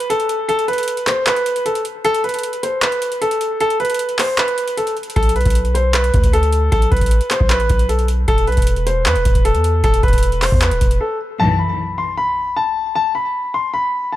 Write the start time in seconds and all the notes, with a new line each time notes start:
0.00 closed hi-hat
0.10 A4, closed hi-hat
0.20 closed hi-hat
0.29 closed hi-hat
0.48 A4, closed hi-hat
0.59 closed hi-hat
0.68 B4, closed hi-hat
0.73 closed hi-hat
0.78 closed hi-hat
0.83 closed hi-hat
0.88 closed hi-hat
0.97 closed hi-hat
1.07 C5, clap, closed hi-hat
1.27 B4, clap, closed hi-hat
1.36 closed hi-hat
1.46 closed hi-hat
1.56 closed hi-hat
1.65 A4, closed hi-hat
1.75 closed hi-hat
1.85 closed hi-hat
2.05 A4, closed hi-hat
2.14 closed hi-hat
2.24 B4, closed hi-hat
2.29 closed hi-hat
2.34 closed hi-hat
2.39 closed hi-hat
2.43 closed hi-hat
2.53 closed hi-hat
2.63 C5, closed hi-hat
2.82 B4, clap, closed hi-hat
2.92 closed hi-hat
3.02 closed hi-hat
3.12 closed hi-hat
3.21 A4, closed hi-hat
3.31 closed hi-hat
3.41 closed hi-hat
3.60 A4, closed hi-hat
3.70 closed hi-hat
3.80 B4, closed hi-hat
3.85 closed hi-hat
3.90 closed hi-hat
3.94 closed hi-hat
3.99 closed hi-hat
4.09 closed hi-hat
4.19 C5, clap, open hi-hat
4.38 B4, clap, closed hi-hat
4.48 closed hi-hat
4.58 closed hi-hat
4.68 closed hi-hat
4.77 A4, closed hi-hat
4.87 closed hi-hat
4.97 closed hi-hat
5.03 closed hi-hat
5.10 closed hi-hat
5.16 B1 A4, kick, closed hi-hat
5.23 closed hi-hat
5.29 closed hi-hat
5.36 B4, closed hi-hat
5.41 closed hi-hat
5.45 B1, kick, closed hi-hat
5.50 closed hi-hat
5.55 closed hi-hat
5.65 closed hi-hat
5.75 C5, closed hi-hat
5.94 B4, clap, closed hi-hat
6.04 closed hi-hat
6.14 D2, kick, closed hi-hat
6.23 kick, closed hi-hat
6.33 A4, closed hi-hat
6.43 closed hi-hat
6.52 closed hi-hat
6.72 B1 A4, kick, closed hi-hat
6.82 closed hi-hat
6.91 B1 B4, kick, closed hi-hat
6.97 closed hi-hat
7.01 kick, closed hi-hat
7.06 closed hi-hat
7.11 A1, closed hi-hat
7.21 closed hi-hat
7.31 C5, clap, closed hi-hat
7.40 B1, kick
7.50 B4, clap, closed hi-hat
7.60 A1, closed hi-hat
7.69 B1, kick, closed hi-hat
7.79 closed hi-hat
7.89 A4, closed hi-hat
7.99 closed hi-hat
8.08 closed hi-hat
8.28 E1 A4, kick, closed hi-hat
8.38 closed hi-hat
8.47 B1 B4, closed hi-hat
8.52 closed hi-hat
8.57 E1, kick, closed hi-hat
8.62 closed hi-hat
8.67 closed hi-hat
8.76 closed hi-hat
8.86 C5, closed hi-hat
9.06 E2 B4, clap, closed hi-hat
9.15 E1, closed hi-hat
9.25 E1, kick, closed hi-hat
9.35 kick, closed hi-hat
9.45 A4, closed hi-hat
9.54 E2, closed hi-hat
9.64 closed hi-hat
9.84 E1 A4, kick, closed hi-hat
9.94 closed hi-hat
10.03 E1 B4, kick, closed hi-hat
10.08 closed hi-hat
10.13 kick, closed hi-hat
10.18 closed hi-hat
10.23 closed hi-hat
10.32 closed hi-hat
10.42 C5, clap, open hi-hat
10.52 E2, kick
10.61 B4, clap, closed hi-hat
10.71 D1, closed hi-hat
10.81 E1, kick, closed hi-hat
10.91 closed hi-hat
11.01 A4
11.40 B1 F#2 E3 A5
11.59 B5
11.98 C6
12.17 B5
12.56 A5
12.95 A5
13.15 B5
13.54 C6
13.74 B5
14.12 A5